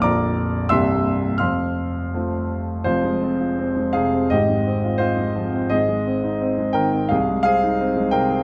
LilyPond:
<<
  \new Staff \with { instrumentName = "Grand piano" } { \time 2/4 \key f \major \tempo 4 = 86 <d'' bes'' d'''>4 <e'' c''' e'''>4 | <f'' c''' f'''>4. r8 | \key f \minor <f' c''>4. <aes' f''>8 | <g' ees''>4 <f' c''>4 |
<aes' ees''>4. <bes' g''>8 | <aes' f''>8 <aes' f''>4 <bes' g''>8 | }
  \new Staff \with { instrumentName = "Grand piano" } { \clef bass \time 2/4 \key f \major <bes,,, bes,, bes f' a'>4 <c,, c, bes d' g'>4 | <f,, f,>4 <a c' f'>4 | \key f \minor <f,, f,>16 aes16 c'16 f'16 c'16 aes16 c16 c'16 | <aes,, aes,>16 aes16 c'16 f'16 c'16 aes16 f16 c'16 |
<aes,, aes,>16 aes16 c'16 ees'16 c'16 aes16 ees16 c'16 | c,16 aes16 c'16 ees'16 c'16 aes16 c16 c'16 | }
>>